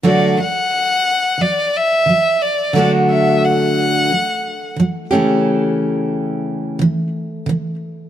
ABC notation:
X:1
M:4/4
L:1/8
Q:"Swing 16ths" 1/4=89
K:D
V:1 name="Violin"
d f3 d e2 d | d e f4 z2 | z8 |]
V:2 name="Steel-string acoustic guitar" clef=bass
[D,F,A,DF] [D,F,] z2 [D,F,] z [D,F,] z | [D,F,A,DF]4 [D,F,] z [D,F,] [C,E,A,CG]- | [C,E,A,CG]4 [C,E,] z [C,E,] z |]